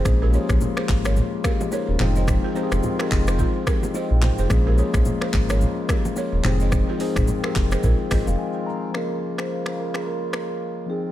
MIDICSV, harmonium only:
0, 0, Header, 1, 2, 480
1, 0, Start_track
1, 0, Tempo, 555556
1, 47, Time_signature, 4, 2, 24, 8
1, 9607, End_track
2, 0, Start_track
2, 0, Title_t, "Harmonium"
2, 0, Program_c, 0, 20
2, 0, Note_on_c, 0, 56, 76
2, 0, Note_on_c, 0, 65, 93
2, 48, Note_on_c, 0, 49, 80
2, 48, Note_on_c, 0, 58, 75
2, 1692, Note_off_c, 0, 65, 0
2, 1711, Note_off_c, 0, 49, 0
2, 1711, Note_off_c, 0, 58, 0
2, 1725, Note_on_c, 0, 60, 78
2, 1726, Note_on_c, 0, 51, 84
2, 1726, Note_on_c, 0, 65, 94
2, 3852, Note_off_c, 0, 56, 0
2, 3865, Note_off_c, 0, 51, 0
2, 3865, Note_off_c, 0, 60, 0
2, 3887, Note_on_c, 0, 58, 77
2, 3888, Note_on_c, 0, 49, 85
2, 3888, Note_on_c, 0, 56, 74
2, 5550, Note_off_c, 0, 58, 0
2, 5551, Note_off_c, 0, 49, 0
2, 5551, Note_off_c, 0, 56, 0
2, 5565, Note_on_c, 0, 51, 86
2, 5565, Note_on_c, 0, 56, 81
2, 5566, Note_on_c, 0, 60, 79
2, 7692, Note_off_c, 0, 65, 0
2, 7704, Note_off_c, 0, 51, 0
2, 7704, Note_off_c, 0, 56, 0
2, 7705, Note_off_c, 0, 60, 0
2, 7726, Note_on_c, 0, 49, 73
2, 7726, Note_on_c, 0, 56, 70
2, 7727, Note_on_c, 0, 58, 66
2, 7727, Note_on_c, 0, 65, 85
2, 9390, Note_off_c, 0, 49, 0
2, 9390, Note_off_c, 0, 58, 0
2, 9405, Note_on_c, 0, 60, 69
2, 9407, Note_on_c, 0, 51, 77
2, 9607, Note_off_c, 0, 51, 0
2, 9607, Note_off_c, 0, 56, 0
2, 9607, Note_off_c, 0, 60, 0
2, 9607, Note_off_c, 0, 65, 0
2, 9607, End_track
0, 0, End_of_file